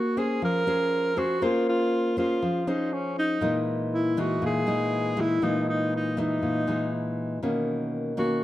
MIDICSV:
0, 0, Header, 1, 3, 480
1, 0, Start_track
1, 0, Tempo, 500417
1, 1354, Time_signature, 4, 2, 24, 8
1, 8095, End_track
2, 0, Start_track
2, 0, Title_t, "Alto saxophone"
2, 0, Program_c, 0, 65
2, 0, Note_on_c, 0, 66, 75
2, 171, Note_on_c, 0, 68, 76
2, 185, Note_off_c, 0, 66, 0
2, 402, Note_off_c, 0, 68, 0
2, 425, Note_on_c, 0, 70, 96
2, 1135, Note_on_c, 0, 66, 88
2, 1149, Note_off_c, 0, 70, 0
2, 1371, Note_on_c, 0, 65, 77
2, 1386, Note_off_c, 0, 66, 0
2, 1603, Note_off_c, 0, 65, 0
2, 1618, Note_on_c, 0, 65, 86
2, 2053, Note_off_c, 0, 65, 0
2, 2093, Note_on_c, 0, 65, 81
2, 2570, Note_on_c, 0, 63, 75
2, 2584, Note_off_c, 0, 65, 0
2, 2807, Note_on_c, 0, 61, 69
2, 2822, Note_off_c, 0, 63, 0
2, 3041, Note_off_c, 0, 61, 0
2, 3055, Note_on_c, 0, 63, 75
2, 3474, Note_off_c, 0, 63, 0
2, 3778, Note_on_c, 0, 64, 78
2, 4033, Note_on_c, 0, 66, 80
2, 4048, Note_off_c, 0, 64, 0
2, 4254, Note_off_c, 0, 66, 0
2, 4275, Note_on_c, 0, 68, 85
2, 4992, Note_on_c, 0, 64, 83
2, 5006, Note_off_c, 0, 68, 0
2, 5213, Note_on_c, 0, 63, 75
2, 5228, Note_off_c, 0, 64, 0
2, 5444, Note_off_c, 0, 63, 0
2, 5460, Note_on_c, 0, 63, 76
2, 5671, Note_off_c, 0, 63, 0
2, 5717, Note_on_c, 0, 63, 70
2, 5921, Note_off_c, 0, 63, 0
2, 5953, Note_on_c, 0, 63, 74
2, 6855, Note_off_c, 0, 63, 0
2, 7851, Note_on_c, 0, 66, 70
2, 8095, Note_off_c, 0, 66, 0
2, 8095, End_track
3, 0, Start_track
3, 0, Title_t, "Nylon-string guitar"
3, 0, Program_c, 1, 24
3, 0, Note_on_c, 1, 58, 68
3, 162, Note_on_c, 1, 61, 60
3, 166, Note_on_c, 1, 68, 60
3, 170, Note_on_c, 1, 72, 61
3, 369, Note_off_c, 1, 58, 0
3, 403, Note_on_c, 1, 53, 67
3, 600, Note_off_c, 1, 61, 0
3, 600, Note_off_c, 1, 68, 0
3, 603, Note_off_c, 1, 72, 0
3, 641, Note_on_c, 1, 61, 58
3, 646, Note_on_c, 1, 68, 64
3, 649, Note_on_c, 1, 72, 60
3, 1079, Note_off_c, 1, 61, 0
3, 1082, Note_off_c, 1, 68, 0
3, 1082, Note_off_c, 1, 72, 0
3, 1116, Note_on_c, 1, 61, 52
3, 1121, Note_on_c, 1, 68, 51
3, 1129, Note_on_c, 1, 72, 58
3, 1316, Note_off_c, 1, 61, 0
3, 1320, Note_off_c, 1, 68, 0
3, 1322, Note_off_c, 1, 72, 0
3, 1335, Note_off_c, 1, 53, 0
3, 1358, Note_on_c, 1, 58, 70
3, 1362, Note_on_c, 1, 61, 54
3, 1365, Note_on_c, 1, 72, 69
3, 1368, Note_on_c, 1, 68, 53
3, 2039, Note_off_c, 1, 61, 0
3, 2040, Note_off_c, 1, 68, 0
3, 2041, Note_off_c, 1, 72, 0
3, 2080, Note_on_c, 1, 61, 58
3, 2089, Note_on_c, 1, 68, 51
3, 2089, Note_on_c, 1, 72, 60
3, 2293, Note_off_c, 1, 58, 0
3, 2325, Note_on_c, 1, 53, 66
3, 2520, Note_off_c, 1, 61, 0
3, 2521, Note_off_c, 1, 68, 0
3, 2523, Note_off_c, 1, 72, 0
3, 2563, Note_on_c, 1, 61, 62
3, 2566, Note_on_c, 1, 68, 55
3, 2569, Note_on_c, 1, 72, 59
3, 3240, Note_off_c, 1, 61, 0
3, 3241, Note_off_c, 1, 68, 0
3, 3243, Note_off_c, 1, 72, 0
3, 3255, Note_off_c, 1, 53, 0
3, 3272, Note_on_c, 1, 46, 71
3, 3278, Note_on_c, 1, 56, 55
3, 3279, Note_on_c, 1, 52, 52
3, 3283, Note_on_c, 1, 63, 60
3, 3956, Note_off_c, 1, 52, 0
3, 3958, Note_off_c, 1, 56, 0
3, 3960, Note_off_c, 1, 63, 0
3, 4001, Note_on_c, 1, 52, 63
3, 4007, Note_on_c, 1, 56, 58
3, 4008, Note_on_c, 1, 63, 61
3, 4210, Note_off_c, 1, 46, 0
3, 4239, Note_on_c, 1, 46, 72
3, 4440, Note_off_c, 1, 52, 0
3, 4441, Note_off_c, 1, 56, 0
3, 4443, Note_off_c, 1, 63, 0
3, 4477, Note_on_c, 1, 52, 60
3, 4481, Note_on_c, 1, 56, 53
3, 4486, Note_on_c, 1, 63, 67
3, 4917, Note_off_c, 1, 52, 0
3, 4920, Note_off_c, 1, 56, 0
3, 4920, Note_off_c, 1, 63, 0
3, 4955, Note_on_c, 1, 52, 62
3, 4959, Note_on_c, 1, 56, 55
3, 4961, Note_on_c, 1, 63, 62
3, 5156, Note_off_c, 1, 52, 0
3, 5159, Note_off_c, 1, 56, 0
3, 5159, Note_off_c, 1, 63, 0
3, 5173, Note_off_c, 1, 46, 0
3, 5199, Note_on_c, 1, 46, 68
3, 5202, Note_on_c, 1, 52, 51
3, 5205, Note_on_c, 1, 56, 53
3, 5212, Note_on_c, 1, 63, 54
3, 5879, Note_off_c, 1, 52, 0
3, 5881, Note_off_c, 1, 56, 0
3, 5885, Note_off_c, 1, 63, 0
3, 5919, Note_on_c, 1, 52, 57
3, 5924, Note_on_c, 1, 56, 55
3, 5930, Note_on_c, 1, 63, 66
3, 6134, Note_off_c, 1, 46, 0
3, 6162, Note_on_c, 1, 46, 60
3, 6359, Note_off_c, 1, 52, 0
3, 6359, Note_off_c, 1, 56, 0
3, 6364, Note_off_c, 1, 63, 0
3, 6401, Note_on_c, 1, 52, 56
3, 6406, Note_on_c, 1, 56, 56
3, 6409, Note_on_c, 1, 63, 61
3, 7079, Note_off_c, 1, 52, 0
3, 7082, Note_off_c, 1, 56, 0
3, 7083, Note_off_c, 1, 63, 0
3, 7095, Note_off_c, 1, 46, 0
3, 7122, Note_on_c, 1, 47, 67
3, 7125, Note_on_c, 1, 51, 46
3, 7128, Note_on_c, 1, 58, 52
3, 7130, Note_on_c, 1, 61, 56
3, 7800, Note_off_c, 1, 51, 0
3, 7803, Note_off_c, 1, 58, 0
3, 7804, Note_off_c, 1, 61, 0
3, 7837, Note_on_c, 1, 51, 55
3, 7841, Note_on_c, 1, 58, 55
3, 7844, Note_on_c, 1, 61, 61
3, 8055, Note_off_c, 1, 47, 0
3, 8095, Note_off_c, 1, 51, 0
3, 8095, Note_off_c, 1, 58, 0
3, 8095, Note_off_c, 1, 61, 0
3, 8095, End_track
0, 0, End_of_file